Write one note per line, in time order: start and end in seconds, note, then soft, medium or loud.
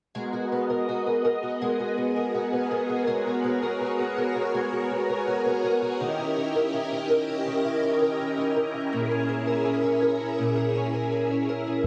0.14 1.60 G#3 medium
0.14 5.96 B3 medium
0.14 5.96 F#4 medium
0.14 5.96 G#4 medium
0.14 11.81 A#4 medium
0.14 3.04 D#5 medium
0.33 0.87 F#4 soft
0.52 1.05 B3 soft
0.70 1.24 A#4 medium
0.89 1.42 F#4 medium
1.06 1.96 B3 soft
1.25 2.15 A#4 soft
1.43 1.78 F#4 soft
1.61 3.06 G#3 medium
1.79 2.33 F#4 soft
1.97 2.51 B3 soft
2.16 2.71 A#4 medium
2.34 2.88 F#4 soft
2.53 3.43 B3 soft
2.71 3.62 A#4 medium
2.89 3.25 F#4 soft
3.07 4.53 G#3 medium
3.07 5.97 C#5 medium
3.26 3.79 F#4 soft
3.44 3.98 B3 medium
3.62 4.17 A#4 medium
3.80 4.34 F#4 soft
3.99 4.90 B3 soft
4.17 5.09 A#4 medium
4.36 4.71 F#4 medium
4.54 6.08 G#3 medium
4.72 5.26 F#4 soft
4.91 5.44 B3 soft
5.09 5.63 A#4 medium
5.27 5.81 F#4 soft
5.45 6.08 B3 soft
5.64 6.21 A#4 medium
5.82 6.08 F#4 medium
6.00 7.45 D#3 medium
6.00 11.82 C#4 medium
6.00 11.82 E4 medium
6.00 8.90 G4 medium
6.00 8.90 D#5 medium
6.18 6.73 E4 medium
6.37 6.91 C#4 medium
6.55 7.10 A#4 medium
6.74 7.28 E4 soft
6.91 7.83 C#4 medium
7.10 8.01 A#4 medium
7.29 7.64 E4 soft
7.46 9.00 D#3 medium
7.65 8.19 E4 soft
7.83 8.37 C#4 medium
8.01 8.56 A#4 medium
8.20 8.74 E4 medium
8.38 9.28 C#4 soft
8.56 9.14 A#4 medium
8.74 9.11 E4 medium
8.92 10.37 A#2 medium
8.92 11.83 G#4 medium
8.92 11.83 E5 medium
9.11 9.65 G#4 medium
9.29 9.82 C#4 medium
9.47 10.02 A#4 medium
9.65 10.20 G#4 medium
9.84 10.75 C#4 soft
10.02 10.93 A#4 medium
10.20 10.57 G#4 soft
10.38 11.87 A#2 medium
10.57 11.12 G#4 soft
10.76 11.29 C#4 medium
10.94 11.49 A#4 medium
11.12 11.66 G#4 soft
11.31 11.87 C#4 soft
11.49 11.85 A#4 medium
11.67 11.87 G#4 medium